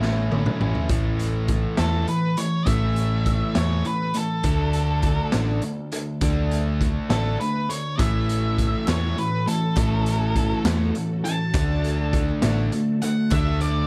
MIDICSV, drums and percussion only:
0, 0, Header, 1, 2, 480
1, 0, Start_track
1, 0, Key_signature, 3, "major"
1, 0, Tempo, 591133
1, 734, Time_signature, 6, 3, 24, 8
1, 11262, End_track
2, 0, Start_track
2, 0, Title_t, "Drums"
2, 17, Note_on_c, 9, 38, 56
2, 98, Note_off_c, 9, 38, 0
2, 257, Note_on_c, 9, 48, 63
2, 338, Note_off_c, 9, 48, 0
2, 374, Note_on_c, 9, 47, 74
2, 456, Note_off_c, 9, 47, 0
2, 493, Note_on_c, 9, 45, 88
2, 575, Note_off_c, 9, 45, 0
2, 609, Note_on_c, 9, 43, 73
2, 690, Note_off_c, 9, 43, 0
2, 724, Note_on_c, 9, 42, 81
2, 727, Note_on_c, 9, 36, 103
2, 805, Note_off_c, 9, 42, 0
2, 808, Note_off_c, 9, 36, 0
2, 969, Note_on_c, 9, 42, 71
2, 1050, Note_off_c, 9, 42, 0
2, 1203, Note_on_c, 9, 42, 60
2, 1207, Note_on_c, 9, 36, 75
2, 1284, Note_off_c, 9, 42, 0
2, 1288, Note_off_c, 9, 36, 0
2, 1440, Note_on_c, 9, 38, 100
2, 1440, Note_on_c, 9, 42, 83
2, 1522, Note_off_c, 9, 38, 0
2, 1522, Note_off_c, 9, 42, 0
2, 1684, Note_on_c, 9, 42, 59
2, 1765, Note_off_c, 9, 42, 0
2, 1923, Note_on_c, 9, 42, 68
2, 2005, Note_off_c, 9, 42, 0
2, 2162, Note_on_c, 9, 42, 88
2, 2167, Note_on_c, 9, 36, 94
2, 2243, Note_off_c, 9, 42, 0
2, 2248, Note_off_c, 9, 36, 0
2, 2403, Note_on_c, 9, 42, 67
2, 2485, Note_off_c, 9, 42, 0
2, 2644, Note_on_c, 9, 42, 60
2, 2647, Note_on_c, 9, 36, 70
2, 2725, Note_off_c, 9, 42, 0
2, 2728, Note_off_c, 9, 36, 0
2, 2883, Note_on_c, 9, 38, 104
2, 2883, Note_on_c, 9, 42, 79
2, 2964, Note_off_c, 9, 38, 0
2, 2964, Note_off_c, 9, 42, 0
2, 3124, Note_on_c, 9, 42, 64
2, 3205, Note_off_c, 9, 42, 0
2, 3360, Note_on_c, 9, 42, 66
2, 3441, Note_off_c, 9, 42, 0
2, 3600, Note_on_c, 9, 42, 85
2, 3606, Note_on_c, 9, 36, 103
2, 3682, Note_off_c, 9, 42, 0
2, 3687, Note_off_c, 9, 36, 0
2, 3842, Note_on_c, 9, 42, 65
2, 3923, Note_off_c, 9, 42, 0
2, 4079, Note_on_c, 9, 42, 64
2, 4085, Note_on_c, 9, 36, 72
2, 4161, Note_off_c, 9, 42, 0
2, 4166, Note_off_c, 9, 36, 0
2, 4321, Note_on_c, 9, 38, 100
2, 4321, Note_on_c, 9, 42, 95
2, 4402, Note_off_c, 9, 38, 0
2, 4402, Note_off_c, 9, 42, 0
2, 4561, Note_on_c, 9, 42, 67
2, 4642, Note_off_c, 9, 42, 0
2, 4804, Note_on_c, 9, 42, 72
2, 4886, Note_off_c, 9, 42, 0
2, 5042, Note_on_c, 9, 42, 94
2, 5046, Note_on_c, 9, 36, 97
2, 5124, Note_off_c, 9, 42, 0
2, 5127, Note_off_c, 9, 36, 0
2, 5289, Note_on_c, 9, 42, 76
2, 5370, Note_off_c, 9, 42, 0
2, 5528, Note_on_c, 9, 36, 71
2, 5532, Note_on_c, 9, 42, 72
2, 5609, Note_off_c, 9, 36, 0
2, 5613, Note_off_c, 9, 42, 0
2, 5766, Note_on_c, 9, 38, 95
2, 5766, Note_on_c, 9, 42, 88
2, 5847, Note_off_c, 9, 38, 0
2, 5847, Note_off_c, 9, 42, 0
2, 6014, Note_on_c, 9, 42, 62
2, 6095, Note_off_c, 9, 42, 0
2, 6251, Note_on_c, 9, 42, 63
2, 6332, Note_off_c, 9, 42, 0
2, 6490, Note_on_c, 9, 36, 103
2, 6491, Note_on_c, 9, 42, 96
2, 6498, Note_on_c, 9, 39, 106
2, 6571, Note_off_c, 9, 36, 0
2, 6572, Note_off_c, 9, 42, 0
2, 6579, Note_off_c, 9, 39, 0
2, 6733, Note_on_c, 9, 42, 68
2, 6814, Note_off_c, 9, 42, 0
2, 6970, Note_on_c, 9, 36, 71
2, 6970, Note_on_c, 9, 42, 65
2, 7051, Note_off_c, 9, 42, 0
2, 7052, Note_off_c, 9, 36, 0
2, 7097, Note_on_c, 9, 39, 26
2, 7178, Note_off_c, 9, 39, 0
2, 7209, Note_on_c, 9, 39, 104
2, 7211, Note_on_c, 9, 38, 102
2, 7211, Note_on_c, 9, 42, 78
2, 7290, Note_off_c, 9, 39, 0
2, 7293, Note_off_c, 9, 38, 0
2, 7293, Note_off_c, 9, 42, 0
2, 7454, Note_on_c, 9, 42, 62
2, 7535, Note_off_c, 9, 42, 0
2, 7692, Note_on_c, 9, 42, 60
2, 7773, Note_off_c, 9, 42, 0
2, 7929, Note_on_c, 9, 39, 106
2, 7930, Note_on_c, 9, 36, 106
2, 7930, Note_on_c, 9, 42, 88
2, 8011, Note_off_c, 9, 39, 0
2, 8011, Note_off_c, 9, 42, 0
2, 8012, Note_off_c, 9, 36, 0
2, 8169, Note_on_c, 9, 42, 65
2, 8250, Note_off_c, 9, 42, 0
2, 8409, Note_on_c, 9, 36, 77
2, 8410, Note_on_c, 9, 42, 69
2, 8491, Note_off_c, 9, 36, 0
2, 8491, Note_off_c, 9, 42, 0
2, 8541, Note_on_c, 9, 39, 29
2, 8622, Note_off_c, 9, 39, 0
2, 8648, Note_on_c, 9, 38, 109
2, 8648, Note_on_c, 9, 42, 85
2, 8652, Note_on_c, 9, 39, 105
2, 8729, Note_off_c, 9, 38, 0
2, 8729, Note_off_c, 9, 42, 0
2, 8734, Note_off_c, 9, 39, 0
2, 8891, Note_on_c, 9, 42, 66
2, 8972, Note_off_c, 9, 42, 0
2, 9134, Note_on_c, 9, 42, 70
2, 9215, Note_off_c, 9, 42, 0
2, 9372, Note_on_c, 9, 36, 113
2, 9374, Note_on_c, 9, 42, 90
2, 9375, Note_on_c, 9, 39, 114
2, 9453, Note_off_c, 9, 36, 0
2, 9455, Note_off_c, 9, 42, 0
2, 9456, Note_off_c, 9, 39, 0
2, 9617, Note_on_c, 9, 42, 75
2, 9698, Note_off_c, 9, 42, 0
2, 9851, Note_on_c, 9, 36, 79
2, 9853, Note_on_c, 9, 42, 77
2, 9932, Note_off_c, 9, 36, 0
2, 9934, Note_off_c, 9, 42, 0
2, 9979, Note_on_c, 9, 39, 30
2, 10060, Note_off_c, 9, 39, 0
2, 10086, Note_on_c, 9, 38, 109
2, 10086, Note_on_c, 9, 42, 87
2, 10097, Note_on_c, 9, 39, 97
2, 10167, Note_off_c, 9, 38, 0
2, 10167, Note_off_c, 9, 42, 0
2, 10178, Note_off_c, 9, 39, 0
2, 10330, Note_on_c, 9, 42, 68
2, 10411, Note_off_c, 9, 42, 0
2, 10570, Note_on_c, 9, 42, 67
2, 10651, Note_off_c, 9, 42, 0
2, 10809, Note_on_c, 9, 42, 89
2, 10810, Note_on_c, 9, 39, 110
2, 10811, Note_on_c, 9, 36, 117
2, 10890, Note_off_c, 9, 42, 0
2, 10891, Note_off_c, 9, 39, 0
2, 10892, Note_off_c, 9, 36, 0
2, 10941, Note_on_c, 9, 39, 33
2, 11022, Note_off_c, 9, 39, 0
2, 11049, Note_on_c, 9, 42, 66
2, 11130, Note_off_c, 9, 42, 0
2, 11262, End_track
0, 0, End_of_file